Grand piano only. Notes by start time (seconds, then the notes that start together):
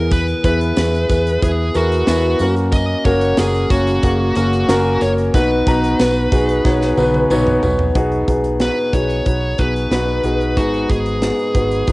Already playing: E3 B3 E4 G#4
0.44 B3 E4 G#4 B4
0.77 B3 E4 G#4 B4
1.09 B3 E4 G#4 B4
1.42 B3 E4 G#4 B4
1.75 B3 E4 G#4 A#4
2.07 B3 E4 G#4 B4
2.40 A#3 C#4 F#4 A#4
3.06 A#3 C#4 F#4 A#4
3.39 A#3 C#4 F#4 A#4
3.71 A#3 C#4 F#4 C#5
4.04 A#3 C#4 F#4 G#4
4.36 A#3 C#4 F#4 A#4
4.69 A#3 C#4 F#4 A#4
5.01 A#3 C#4 F#4 C#5
5.34 B2 B3 D#4 F#4 B4
5.67 B3 D#4 F#4 A#5
6.00 B3 D#4 F#4 B4
6.32 B3 D#4 F#4 G#4
6.64 B3 D#4 F#4 C#5
6.97 B3 D#4 F#4 B4
7.30 B3 D#4 F#4 C#5
7.62 B3 D#4 F#4 B4
7.95 B2 B3 D#4 F#4 G#4
8.28 B3 D#4 F#4 G#4
8.61 B3 D#4 F#4 B4
8.94 B3 D#4 F#4 G#4
9.26 B3 D#4 F#4 B4
9.58 B3 D#4 F#4 G#4
9.91 B3 D#4 F#4 B4
10.24 B3 D#4 F#4 G#4
10.57 G#2 B3 D#4 F#4 G#4
10.89 B3 D#4 F#4
11.22 B3 D#4 F#4 G#4
11.55 B3 D#4 F#4 B4
11.88 B3 D#4 F#4 B4